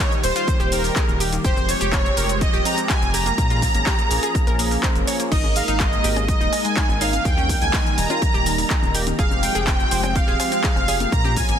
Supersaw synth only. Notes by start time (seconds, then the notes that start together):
0.00 C#5
0.24 C5
0.72 A#4
1.45 C5
1.69 C#5
2.41 D#5
2.66 A#5
2.90 G#5
3.14 A#5
5.32 D#5
5.56 F5
5.80 D#5
6.28 D#5
6.65 G#5
7.01 F5
7.25 G5
7.61 G#5
7.98 A#5
9.19 F5
9.43 G5
10.16 F5
10.52 F5
11.12 A#5
11.37 G#5